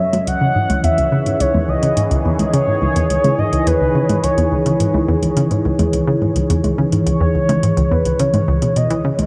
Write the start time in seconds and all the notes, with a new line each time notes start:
Already playing: F#3 C#4 A4 C#5
0.00 E5
0.13 F#3, closed hi-hat, high conga
0.27 C#2 E3 F#5, closed hi-hat
0.41 C#3
0.56 G#2
0.65 D#3
0.70 C#2, closed hi-hat, high conga
0.84 E2 G#4 E5, closed hi-hat
0.98 C#2, closed hi-hat
1.12 C#3
1.26 G#2, closed hi-hat
1.40 C#2 C#5, closed hi-hat
1.54 E2, high conga
1.69 C#2 D#5
1.83 C#3, closed hi-hat
1.97 G#2, closed hi-hat
2.11 C#2, closed hi-hat
2.25 E2
2.39 C#2, closed hi-hat, high conga
2.47 D#5
2.54 C#3 C#5, closed hi-hat
2.68 G#2
2.82 C#2
2.96 E2, closed hi-hat
3.10 C#2, closed hi-hat
3.24 C#3, closed hi-hat, high conga
3.39 G#2 D#5
3.53 C#2, closed hi-hat
3.67 E2 B4, closed hi-hat
3.81 C#2
3.95 C#3
4.09 G#2, closed hi-hat, high conga
4.23 C#2 C#5, closed hi-hat
4.38 E2, closed hi-hat
4.52 C#2
4.66 C#3, closed hi-hat
4.80 G#2, closed hi-hat
4.94 C#2, high conga
5.09 E2
5.23 C#2, closed hi-hat
5.37 C#3, closed hi-hat
5.51 G#2, closed hi-hat
5.65 C#2
5.79 E2, closed hi-hat, high conga
5.93 C#2, closed hi-hat
6.08 C#3
6.22 G#2
6.36 C#2, closed hi-hat
6.50 E2, closed hi-hat
6.64 C#2, closed hi-hat, high conga
6.78 C#3
6.92 G#2, closed hi-hat
7.06 C#2 C#5, closed hi-hat
7.20 E2
7.35 C#2
7.49 C#3, closed hi-hat, high conga
7.63 G#2, closed hi-hat
7.77 C#2, closed hi-hat
7.91 E2 B4
8.05 C#2, closed hi-hat
8.19 C#3 C#5, closed hi-hat
8.34 G#2, closed hi-hat, high conga
8.48 C#2
8.62 B2, closed hi-hat
8.76 B2 D#5, closed hi-hat
8.90 E3, closed hi-hat
9.05 C#3
9.19 C#2, closed hi-hat, high conga